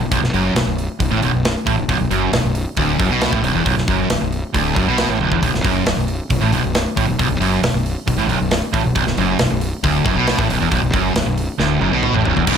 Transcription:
0.00 fingered electric bass B0, distorted electric guitar B1
0.11 fingered electric bass B0, distorted electric guitar B1, kick, open hi-hat
0.22 fingered electric bass B0, distorted electric guitar B1, snare
0.33 fingered electric bass F#1, distorted electric guitar F#2, open hi-hat
0.55 fingered electric bass B0, distorted electric guitar B1, snare, open hi-hat
0.66 fingered electric bass B0, distorted electric guitar B1
0.78 open hi-hat
1.00 fingered electric bass B0, distorted electric guitar B1, kick, open hi-hat
1.11 fingered electric bass A1, distorted electric guitar A2
1.22 fingered electric bass B0, distorted electric guitar B1, open hi-hat
1.34 fingered electric bass B0, distorted electric guitar B1
1.45 snare, open hi-hat
1.66 fingered electric bass A1, distorted electric guitar A2, kick, open hi-hat
1.78 fingered electric bass B0, distorted electric guitar B1
1.88 fingered electric bass B0, distorted electric guitar B1, kick, open hi-hat
1.99 fingered electric bass B0, distorted electric guitar B1
2.10 fingered electric bass F#1, distorted electric guitar F#2, open hi-hat
2.33 fingered electric bass B0, distorted electric guitar B1, snare, open hi-hat
2.43 fingered electric bass B0, distorted electric guitar B1
2.55 open hi-hat
2.77 fingered electric bass D1, distorted electric guitar D2, kick, open hi-hat
2.99 fingered electric bass F#1, distorted electric guitar F#2, kick, open hi-hat
3.10 fingered electric bass B1, distorted electric guitar B2
3.21 snare, open hi-hat
3.32 fingered electric bass A1, distorted electric guitar A2, kick
3.43 fingered electric bass B0, distorted electric guitar B1, open hi-hat
3.54 fingered electric bass E1, distorted electric guitar E2
3.66 fingered electric bass B0, distorted electric guitar B1, kick, open hi-hat
3.77 fingered electric bass B0, distorted electric guitar B1, snare
3.88 fingered electric bass F#1, distorted electric guitar F#2, kick, open hi-hat
4.10 fingered electric bass B0, distorted electric guitar B1, snare, open hi-hat
4.21 fingered electric bass B0, distorted electric guitar B1
4.32 open hi-hat
4.54 fingered electric bass D1, distorted electric guitar D2, kick, open hi-hat
4.76 fingered electric bass F#1, distorted electric guitar F#2, kick, open hi-hat
4.87 fingered electric bass B1, distorted electric guitar B2
4.98 snare, open hi-hat
5.08 fingered electric bass A1, distorted electric guitar A2
5.19 fingered electric bass B0, distorted electric guitar B1, high tom
5.32 fingered electric bass E1, distorted electric guitar E2, kick
5.43 fingered electric bass B0, distorted electric guitar B1, kick, open hi-hat
5.54 fingered electric bass B0, distorted electric guitar B1, snare
5.64 fingered electric bass F#1, distorted electric guitar F#2, kick, open hi-hat
5.86 fingered electric bass B0, distorted electric guitar B1, snare, open hi-hat
5.98 fingered electric bass B0, distorted electric guitar B1
6.08 open hi-hat
6.30 fingered electric bass B0, distorted electric guitar B1, kick, open hi-hat
6.41 fingered electric bass A1, distorted electric guitar A2
6.52 fingered electric bass B0, distorted electric guitar B1, open hi-hat
6.64 fingered electric bass B0, distorted electric guitar B1
6.75 snare, open hi-hat
6.97 fingered electric bass A1, distorted electric guitar A2, kick, open hi-hat
7.08 fingered electric bass B0, distorted electric guitar B1
7.19 fingered electric bass B0, distorted electric guitar B1, kick, open hi-hat
7.29 fingered electric bass B0, distorted electric guitar B1
7.40 fingered electric bass F#1, distorted electric guitar F#2, open hi-hat
7.63 fingered electric bass B0, distorted electric guitar B1, snare, open hi-hat
7.74 fingered electric bass B0, distorted electric guitar B1
7.86 open hi-hat
8.07 fingered electric bass B0, distorted electric guitar B1, kick, open hi-hat
8.18 fingered electric bass A1, distorted electric guitar A2
8.29 fingered electric bass B0, distorted electric guitar B1, open hi-hat
8.40 fingered electric bass B0, distorted electric guitar B1
8.51 snare, open hi-hat
8.74 fingered electric bass A1, distorted electric guitar A2, kick, open hi-hat
8.84 fingered electric bass B0, distorted electric guitar B1
8.95 fingered electric bass B0, distorted electric guitar B1, kick, open hi-hat
9.06 fingered electric bass B0, distorted electric guitar B1, snare
9.17 fingered electric bass F#1, distorted electric guitar F#2, open hi-hat
9.39 fingered electric bass B0, distorted electric guitar B1, snare, open hi-hat
9.51 fingered electric bass B0, distorted electric guitar B1
9.61 open hi-hat
9.84 fingered electric bass D1, distorted electric guitar D2, kick, open hi-hat
10.05 fingered electric bass F#1, distorted electric guitar F#2, kick, open hi-hat
10.17 fingered electric bass B1, distorted electric guitar B2
10.27 snare, open hi-hat
10.39 fingered electric bass A1, distorted electric guitar A2, kick
10.50 fingered electric bass B0, distorted electric guitar B1, open hi-hat
10.61 fingered electric bass E1, distorted electric guitar E2
10.71 fingered electric bass B0, distorted electric guitar B1, kick, open hi-hat
10.83 fingered electric bass B0, distorted electric guitar B1
10.94 fingered electric bass F#1, distorted electric guitar F#2, kick, open hi-hat
11.15 fingered electric bass B0, distorted electric guitar B1, snare, open hi-hat
11.26 fingered electric bass B0, distorted electric guitar B1
11.38 open hi-hat
11.59 fingered electric bass D1, distorted electric guitar D2, snare
11.81 fingered electric bass F#1, distorted electric guitar F#2, high tom
11.91 fingered electric bass B1, distorted electric guitar B2
12.03 mid tom
12.14 fingered electric bass A1, distorted electric guitar A2, mid tom
12.25 fingered electric bass B0, distorted electric guitar B1, floor tom
12.36 fingered electric bass E1, distorted electric guitar E2, floor tom
12.47 fingered electric bass B0, distorted electric guitar B1 F#2 B2, kick, crash

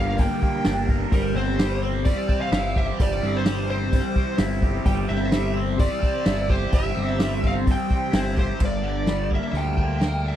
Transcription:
Already playing: picked electric bass G1, overdriven electric guitar G2 D3 G3 A#3 A#4, transistor combo organ G3 A#3 D4 G4 A#4, lead electric guitar F5
0.18 overdriven electric guitar G3, lead electric guitar G5, kick, open hi-hat
0.42 overdriven electric guitar A#3, kick
0.65 picked electric bass G1, overdriven electric guitar D4, snare, open hi-hat
0.89 overdriven electric guitar A#4, kick
1.10 picked electric bass G1, transistor combo organ E3 G3 C4 C5, overdriven electric guitar G3, lead electric guitar A#4, kick, open hi-hat
1.34 picked electric bass G1, overdriven electric guitar C4, lead electric guitar C5
1.59 overdriven electric guitar G3, snare, open hi-hat
1.83 overdriven electric guitar C4
2.05 overdriven electric guitar G3, lead electric guitar D5, kick, open hi-hat
2.29 overdriven electric guitar C4, kick
2.41 lead electric guitar F5
2.52 picked electric bass G1, overdriven electric guitar E4, snare, open hi-hat
2.74 overdriven electric guitar G4, lead electric guitar E5, kick
2.98 picked electric bass G1, overdriven electric guitar G3, lead electric guitar D5, kick, open hi-hat
3.22 picked electric bass G1, overdriven electric guitar C4
3.36 lead electric guitar C5
3.46 overdriven electric guitar G3, snare, open hi-hat
3.69 overdriven electric guitar C4, lead electric guitar C5
3.92 overdriven electric guitar G3, kick, open hi-hat
4.16 overdriven electric guitar C4, kick
4.38 picked electric bass G1, overdriven electric guitar E4, snare, open hi-hat
4.62 overdriven electric guitar G4, kick
4.85 picked electric bass G1, overdriven electric guitar G3, lead electric guitar G5, kick, open hi-hat
5.08 picked electric bass G1, overdriven electric guitar C4, lead electric guitar E5
5.32 overdriven electric guitar G3, snare, open hi-hat
5.55 overdriven electric guitar C4
5.78 overdriven electric guitar G3, lead electric guitar D5, kick, open hi-hat
6.01 overdriven electric guitar C4, kick
6.25 picked electric bass G1, overdriven electric guitar E4, snare, open hi-hat
6.49 overdriven electric guitar G4, lead electric guitar C5, kick
6.72 picked electric bass G1, overdriven electric guitar G3, lead electric guitar E5, kick, open hi-hat
6.95 picked electric bass G1, overdriven electric guitar C4
7.18 overdriven electric guitar G3, snare, open hi-hat
7.43 overdriven electric guitar C4, lead electric guitar F5, kick
7.66 overdriven electric guitar G3, kick, open hi-hat
7.71 lead electric guitar G5
7.89 overdriven electric guitar C4, kick
8.11 picked electric bass G1, overdriven electric guitar E4, snare, open hi-hat
8.17 lead electric guitar C5
8.36 overdriven electric guitar G4, lead electric guitar C5, kick
8.58 picked electric bass G1, overdriven electric guitar G2, kick, crash
8.65 lead electric guitar D5
8.82 overdriven electric guitar D3
9.07 overdriven electric guitar G3, snare, open hi-hat
9.31 overdriven electric guitar A#3, lead electric guitar E5, kick
9.53 picked electric bass D2, overdriven electric guitar G3, open hi-hat
9.57 lead electric guitar G5
9.77 overdriven electric guitar A#3, kick
10.01 overdriven electric guitar A#4, snare, open hi-hat
10.25 overdriven electric guitar D4, lead electric guitar E5

